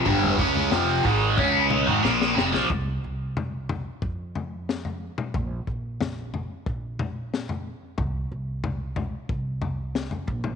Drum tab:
SD |----o-------oooo|------------o---|----o-------o---|------------o---|
T2 |----------o-----|----o-o--------o|----------o-----|----o-o--------o|
FT |ooooo---o--o----|o---o-o---o--o--|o---o-o---o--o--|o---o-o---o--o--|
BD |o-o---o-o-------|o-------o-------|o-o-----o-------|o-------o-----o-|